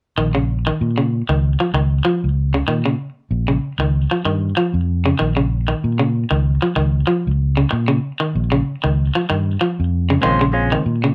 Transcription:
0.18 fingered electric bass A#1, clean electric guitar D#3
0.35 clean electric guitar C#3
0.67 clean electric guitar D#3
0.81 fingered electric bass A#2
0.98 clean electric guitar C#3
1.29 fingered electric bass C#2, clean electric guitar D#3
1.60 clean electric guitar F3
1.74 fingered electric bass C#2, clean electric guitar D#3
2.05 clean electric guitar F3
2.24 fingered electric bass C#2
2.54 clean electric guitar C#3
2.68 fingered electric bass A#2, clean electric guitar D#3
2.86 clean electric guitar C#3
3.31 fingered electric bass A#1
3.48 clean electric guitar C#3
3.79 fingered electric bass C#2, clean electric guitar D#3
4.11 clean electric guitar F3
4.25 fingered electric bass G2, clean electric guitar D#3
4.57 clean electric guitar F3
4.74 fingered electric bass F2
5.06 clean electric guitar C#3
5.19 fingered electric bass A#1, clean electric guitar D#3
5.37 clean electric guitar C#3
5.68 clean electric guitar D#3
5.84 fingered electric bass A#2
5.99 clean electric guitar C#3
6.31 fingered electric bass C#2, clean electric guitar D#3
6.62 clean electric guitar F3
6.76 fingered electric bass C#2, clean electric guitar D#3
7.07 clean electric guitar F3
7.27 fingered electric bass C#2
7.57 clean electric guitar C#3
7.71 fingered electric bass A#2, muted clean electric guitar stroke
7.88 clean electric guitar C#3
8.20 clean electric guitar D#3
8.35 fingered electric bass A#1
8.52 clean electric guitar C#3
8.84 fingered electric bass C#2, clean electric guitar D#3
9.15 clean electric guitar F3
9.30 fingered electric bass G2, clean electric guitar D#3
9.61 clean electric guitar F3
9.80 fingered electric bass F2
10.10 clean electric guitar C#3
10.20 tonewheel organ C#3 G#3 C4, clean electric guitar D#3 G#3 C#4 F4 C5
10.24 fingered electric bass A#1
10.41 clean electric guitar C#3
10.52 tonewheel organ C#3 G#3 C4, clean electric guitar G#3 C#4 F4, muted clean electric guitar stroke
10.72 clean electric guitar D#3
10.86 fingered electric bass A#2
11.04 clean electric guitar C#3

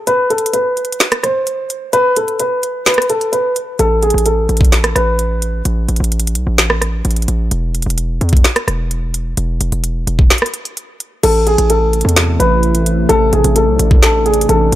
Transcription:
0.07 grand piano B4, closed hi-hat
0.30 grand piano A4, closed hi-hat, open hi-hat
0.38 closed hi-hat
0.46 closed hi-hat
0.53 grand piano B4, closed hi-hat
0.77 closed hi-hat
0.85 closed hi-hat
0.92 closed hi-hat
1.00 finger snap, snare, closed hi-hat
1.12 cross-stick, closed hi-hat
1.23 grand piano C5, cross-stick, closed hi-hat
1.47 closed hi-hat
1.70 closed hi-hat
1.93 grand piano B4, closed hi-hat
2.16 grand piano A4, closed hi-hat, open hi-hat
2.28 closed hi-hat
2.40 grand piano B4, closed hi-hat
2.63 closed hi-hat
2.86 grand piano B4, finger snap, snare, closed hi-hat
2.94 cross-stick, closed hi-hat
3.02 closed hi-hat
3.10 grand piano A4, closed hi-hat
3.21 closed hi-hat
3.33 grand piano B4, closed hi-hat
3.56 closed hi-hat
3.79 808-style bass A1, grand piano A4, closed hi-hat
4.02 grand piano G#4, closed hi-hat, open hi-hat
4.10 808-style bass A1, closed hi-hat
4.18 closed hi-hat
4.26 grand piano A4, closed hi-hat
4.49 808-style bass A1, closed hi-hat
4.57 kick, closed hi-hat
4.65 closed hi-hat
4.72 finger snap, snare, closed hi-hat
4.84 cross-stick, closed hi-hat
4.96 808-style bass A1, grand piano B4, cross-stick, closed hi-hat
5.19 closed hi-hat
5.42 closed hi-hat
5.65 808-style bass A1, closed hi-hat
5.88 808-style bass A1, closed hi-hat, open hi-hat
5.96 808-style bass A1, closed hi-hat
6.04 closed hi-hat
6.12 closed hi-hat
6.20 closed hi-hat
6.27 closed hi-hat
6.35 808-style bass B1, closed hi-hat
6.47 808-style bass A1
6.58 finger snap, snare, closed hi-hat
6.70 cross-stick
6.82 cross-stick, closed hi-hat
7.05 808-style bass A1, closed hi-hat
7.11 closed hi-hat
7.16 closed hi-hat
7.22 closed hi-hat
7.28 808-style bass A1, closed hi-hat
7.51 808-style bass E1, closed hi-hat
7.75 closed hi-hat, open hi-hat
7.82 808-style bass E1, closed hi-hat
7.90 closed hi-hat
7.98 closed hi-hat
8.21 808-style bass E2, closed hi-hat
8.29 kick, closed hi-hat
8.37 closed hi-hat
8.44 finger snap, snare, closed hi-hat
8.56 cross-stick, closed hi-hat
8.68 808-style bass E1, cross-stick, closed hi-hat
8.91 closed hi-hat
9.14 closed hi-hat
9.37 808-style bass E1, closed hi-hat
9.60 808-style bass E1, closed hi-hat, open hi-hat
9.72 808-style bass E1, closed hi-hat
9.84 closed hi-hat
10.07 808-style bass E1, closed hi-hat
10.19 kick
10.30 finger snap, snare, closed hi-hat
10.38 cross-stick, closed hi-hat
10.46 closed hi-hat
10.54 closed hi-hat
10.65 closed hi-hat
10.77 closed hi-hat
11.00 closed hi-hat
11.23 808-style bass A1, analog synth pad C3 E3 A3 E4, grand piano A4, closed hi-hat, crash
11.47 grand piano G#4, closed hi-hat, open hi-hat
11.58 808-style bass A1, closed hi-hat
11.70 grand piano A4, closed hi-hat
11.93 closed hi-hat
12.01 808-style bass E2, closed hi-hat
12.09 closed hi-hat
12.16 finger snap, snare, closed hi-hat
12.40 808-style bass A1, grand piano B4, closed hi-hat
12.63 closed hi-hat
12.75 closed hi-hat
12.86 closed hi-hat
13.09 808-style bass A1, analog synth pad D4, grand piano A4, closed hi-hat
13.33 808-style bass A1, grand piano G#4, closed hi-hat, open hi-hat
13.44 808-style bass A1, closed hi-hat
13.56 grand piano A4, closed hi-hat
13.68 808-style bass B1
13.79 808-style bass A1, closed hi-hat
13.91 kick
14.03 grand piano A4, finger snap, snare, closed hi-hat
14.26 grand piano G#4, closed hi-hat
14.34 closed hi-hat
14.41 closed hi-hat
14.49 808-style bass A1, grand piano A4, closed hi-hat
14.72 808-style bass A1, closed hi-hat

